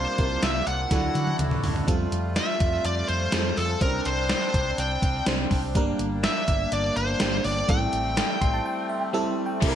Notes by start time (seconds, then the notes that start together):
Already playing: C3 G3 A#3 C4 D4 F4 A#4 C5
0.18 C2 G3 C4 E4 A#4, kick, closed hi-hat
0.25 F4
0.43 C2 E5, snare, closed hi-hat
0.67 C2 F#5, closed hi-hat
0.91 D2 D3 F#3 D4 E4 F#4 A4, kick, snare, closed hi-hat
1.15 D3, closed hi-hat, high tom
1.27 high tom
1.39 D2, closed hi-hat, mid tom
1.51 mid tom
1.63 D2, floor tom, open hi-hat
1.76 floor tom
1.87 F2 G3 A3 C4 F4 A4, kick, closed hi-hat
2.12 F2, closed hi-hat
2.36 E5, snare, closed hi-hat
2.60 F2, kick, closed hi-hat
2.84 F2 D5, closed hi-hat
3.08 F2 C5, closed hi-hat
3.32 F2 G3 C4 F4 G#4, snare, closed hi-hat
3.39 A4
3.57 F2 A4, open hi-hat
3.80 C2 G3 C4 C#4 D4 A#4 C5, kick, closed hi-hat
3.87 D4
4.05 C2 C5, closed hi-hat
4.29 C5, snare, closed hi-hat
4.54 C2, kick, closed hi-hat
4.78 C2 G5, closed hi-hat
5.02 C2, kick, closed hi-hat
5.26 C2 G3 C4 D4 C5, snare, closed hi-hat
5.51 C2, kick, open hi-hat
5.75 G1 G3 A#3 D4 A#4, kick, closed hi-hat
5.99 G1, closed hi-hat
6.24 E5, snare, closed hi-hat
6.48 G1, kick, closed hi-hat
6.72 G1 D5, closed hi-hat
6.96 G1 C5, closed hi-hat
7.19 G1 G3 A#3 D4 G4, snare, closed hi-hat
7.44 G1 D5, open hi-hat
7.68 A1 G3 A3 C4 E4 A4 G5, kick, closed hi-hat
7.93 A1, closed hi-hat
8.17 snare, closed hi-hat
8.41 A1 C6, kick, closed hi-hat
8.54 A5
8.66 G5
8.89 E5
9.13 G3 C4 E4 A4 E5
9.46 G5
9.61 C2 C3 G3 A#3 C4 D4 E4 A4, kick, closed hi-hat, crash
9.68 A#4